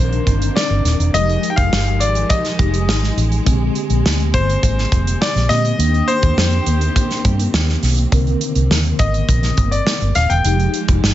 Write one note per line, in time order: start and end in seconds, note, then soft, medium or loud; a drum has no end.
0.00 0.19 A#1 medium
0.00 1.12 C3 medium
0.00 1.09 D#3 medium
0.00 3.43 D#3 medium
0.00 1.12 A#3 medium
0.00 1.10 C4 medium
0.00 1.10 D4 medium
0.00 1.12 D4 medium
0.00 1.10 A#4 medium
0.00 0.52 C5 medium
0.13 closed hi-hat soft
0.27 0.48 G1 medium
0.27 kick medium
0.27 closed hi-hat medium
0.42 closed hi-hat medium
0.55 1.10 D5 medium
0.55 snare loud
0.70 0.81 G1 medium
0.85 0.95 D#1 medium
0.85 snare soft
0.85 closed hi-hat medium
1.00 1.10 E1 medium
1.00 closed hi-hat soft
1.13 1.35 F1 medium
1.13 2.56 F3 medium
1.13 3.44 F3 medium
1.13 2.56 G#3 medium
1.13 5.75 G#3 medium
1.13 3.44 G4 medium
1.13 2.57 G4 medium
1.13 1.48 D#5 loud
1.13 closed hi-hat medium
1.29 closed hi-hat soft
1.43 closed hi-hat medium
1.50 1.57 G5 medium
1.56 1.68 F1 medium
1.56 2.02 F5 medium
1.56 kick medium
1.56 closed hi-hat soft
1.73 2.01 G1 medium
1.73 snare loud
1.86 closed hi-hat soft
2.00 2.22 G#1 loud
2.00 2.31 D5 medium
2.00 closed hi-hat medium
2.15 closed hi-hat soft
2.29 3.13 D#5 medium
2.29 kick medium
2.29 closed hi-hat medium
2.45 snare soft
2.45 closed hi-hat soft
2.59 2.88 F1 medium
2.59 3.46 F3 soft
2.59 3.44 G#3 soft
2.59 3.47 D#4 soft
2.59 3.46 G4 soft
2.59 kick medium
2.59 closed hi-hat medium
2.74 closed hi-hat medium
2.88 3.10 G#1 medium
2.88 snare loud
3.04 snare soft
3.17 3.38 A1 medium
3.17 closed hi-hat medium
3.32 closed hi-hat soft
3.45 3.68 A#1 medium
3.45 3.52 C3 medium
3.45 5.46 G#3 medium
3.45 10.41 A#3 medium
3.45 5.46 C4 medium
3.45 10.41 C4 medium
3.45 5.46 G4 medium
3.45 kick medium
3.45 closed hi-hat medium
3.51 5.48 D3 medium
3.75 closed hi-hat medium
3.90 4.01 A#1 medium
3.90 closed hi-hat soft
4.05 4.35 D2 medium
4.05 snare loud
4.20 closed hi-hat soft
4.34 4.55 G1 medium
4.34 5.24 C5 medium
4.34 kick medium
4.34 closed hi-hat medium
4.50 closed hi-hat soft
4.63 4.84 G#1 medium
4.63 kick medium
4.63 closed hi-hat medium
4.78 snare soft
4.92 5.13 F1 medium
4.92 kick medium
4.92 closed hi-hat medium
5.07 closed hi-hat medium
5.21 5.51 D5 medium
5.21 snare loud
5.36 5.46 A#1 medium
5.36 snare soft
5.36 closed hi-hat soft
5.49 5.71 A#2 medium
5.49 5.79 D3 soft
5.49 5.79 G#3 soft
5.49 5.79 C4 soft
5.49 5.79 G4 medium
5.49 6.10 D#5 loud
5.49 snare soft
5.49 closed hi-hat medium
5.65 closed hi-hat soft
5.78 6.00 D#2 medium
5.78 8.07 D#3 medium
5.78 8.10 D#3 medium
5.78 8.08 A#3 medium
5.78 8.08 D4 soft
5.78 8.10 G4 medium
5.78 8.08 G4 medium
5.78 closed hi-hat medium
5.94 closed hi-hat soft
6.08 7.20 C5 loud
6.08 closed hi-hat medium
6.23 6.34 D#2 loud
6.23 kick medium
6.23 closed hi-hat medium
6.37 6.58 F2 medium
6.37 snare loud
6.52 closed hi-hat soft
6.66 6.88 D#2 medium
6.66 closed hi-hat medium
6.81 closed hi-hat soft
6.96 kick medium
6.96 closed hi-hat medium
7.11 snare soft
7.11 closed hi-hat soft
7.25 7.46 G2 medium
7.25 kick medium
7.25 closed hi-hat medium
7.39 closed hi-hat medium
7.54 7.75 D#2 medium
7.54 snare loud
7.69 snare soft
7.83 8.04 B1 medium
7.83 snare soft
7.83 open hi-hat medium
7.97 closed hi-hat soft
8.11 8.34 C2 loud
8.11 10.43 C3 medium
8.11 10.41 D3 medium
8.11 10.41 C4 medium
8.11 10.42 A#4 medium
8.11 kick loud
8.11 closed hi-hat medium
8.18 10.44 D#3 medium
8.27 closed hi-hat soft
8.41 closed hi-hat medium
8.55 8.66 C2 medium
8.55 closed hi-hat medium
8.70 8.91 D#2 medium
8.70 snare loud
8.85 closed hi-hat soft
8.99 9.21 G#1 medium
8.99 9.74 D#5 medium
8.99 kick medium
8.99 closed hi-hat medium
9.14 closed hi-hat soft
9.29 9.50 A#1 medium
9.29 kick medium
9.29 closed hi-hat medium
9.43 snare soft
9.43 closed hi-hat soft
9.57 9.79 G1 medium
9.57 kick medium
9.57 closed hi-hat medium
9.71 10.17 D5 medium
9.71 closed hi-hat medium
9.87 snare loud
10.01 10.12 G1 medium
10.01 closed hi-hat soft
10.15 10.26 D#1 medium
10.15 10.31 F5 loud
10.15 snare soft
10.15 closed hi-hat medium
10.30 10.41 E1 medium
10.30 10.84 G5 medium
10.30 closed hi-hat soft
10.44 10.66 F1 medium
10.44 11.14 F3 medium
10.44 11.14 G#3 medium
10.44 11.14 D#4 medium
10.44 11.14 G4 medium
10.44 closed hi-hat medium
10.60 closed hi-hat soft
10.74 closed hi-hat medium
10.88 10.99 F1 loud
10.88 kick medium
10.88 closed hi-hat soft
11.03 11.14 G1 medium
11.03 snare loud